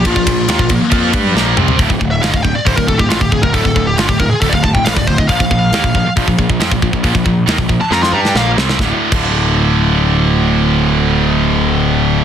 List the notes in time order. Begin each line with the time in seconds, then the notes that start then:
0.05 A#1 A#2 F3 F4, kick, ride
0.16 A#1 A#2 F3, kick
0.27 A#1 A#2 F3, kick, ride
0.48 D#2 D#3 A#3 F4, snare, ride
0.59 A#1 A#2 F3, kick
0.69 A#1 A#2 F3 A#3, kick, ride
0.81 muted distorted electric guitar stroke, muted picked electric bass stroke
0.91 F2 F3 C4 F4, kick, ride
1.13 G2 G3 D4 G4, kick, ride
1.34 A#1 A#2 F3 A#3, snare
1.56 C2 C3 G3 C4, mid tom
1.68 floor tom
1.78 D1 D2 A2, kick, open hi-hat
1.90 D1 D2 A2, kick
2.00 D1 D2 A2, kick
2.11 E5
2.21 G1 G2 D3 F5, snare, open hi-hat
2.29 D2 D#5
2.33 D1 A2 F5, kick
2.42 D1 D2 A2 G5, kick
2.55 D5, muted distorted electric guitar stroke, muted picked electric bass stroke
2.65 D1 D2 A2 C5, kick, open hi-hat
2.76 D1 D2 A2 A#4, kick
2.87 D1 D2 A2 A4, kick
2.97 D1 D2 A2 G4, kick
3.09 A1 A2 E3 F4, snare, open hi-hat
3.21 D1 D2 A2 G4, kick
3.32 D1 D2 A2 G#4, kick
3.42 D1 D2 A2 A#4, kick
3.53 D1 D2 A2 A4, kick, open hi-hat
3.65 D1 D2 A2, kick
3.76 D1 D2 A2, kick
3.87 G4
3.97 G1 G2 D3 F4, snare, open hi-hat
4.08 D1 D2 A2 G4, kick
4.19 D1 D2 A2 A#4, kick
4.30 G#4, muted picked electric bass stroke, muted distorted electric guitar stroke
4.41 D1 D2 A2 A4, kick, open hi-hat
4.49 D1 D5, kick
4.55 D2 A2 F5
4.63 D1 D2 A2 A5, kick
4.73 D1 D2 A2 G5, kick
4.85 A1 A2 E3 F5, snare, open hi-hat
4.96 D1 D2 A2 D5, kick
5.07 D1 D2 A2 C5, kick
5.18 D1 D2 A2 D#5, kick
5.28 A#1 A#2 F3 F5, kick, open hi-hat
5.40 A#1 A#2 F3, kick
5.51 A#1 A#2 F3, kick
5.72 D#2 D#3 A#3, snare, open hi-hat
5.83 A#1 A#2 F3, kick
5.94 A#1 A#2 F3, kick
6.06 muted picked electric bass stroke, muted distorted electric guitar stroke
6.16 A#1 A#2 F3, kick, open hi-hat
6.27 A#1 A#2 F3, kick
6.38 A#1 A#2 F3, kick
6.49 A#1 A#2 F3, kick
6.60 F2 F3 C4, snare, open hi-hat
6.71 A#1 A#2 F3, kick
6.82 A#1 A#2 F3, kick
6.93 A#1 A#2 F3, kick
7.03 A#1 A#2 F3, kick, open hi-hat
7.14 A#1 A#2 F3, kick
7.25 A#1 A#2 F3, kick
7.47 D#2 D#3 A#3, snare, open hi-hat
7.58 A#1 A#2 F3, kick
7.69 A#1 A#2 F3, kick
7.80 A5, muted picked electric bass stroke, muted distorted electric guitar stroke
7.91 F2 F3 C4 F4 A#5, snare
8.03 C6, snare
8.13 G2 G3 D4 G4 A#5
8.21 A5
8.25 G5, snare
8.35 A#1 A#2 F3 A#3 F5, snare
8.57 C2 C3 G3 C4, snare
8.69 snare
8.79 D1 D2 A2 D3, kick, snare
9.12 D1 D2 A2 D3, kick, crash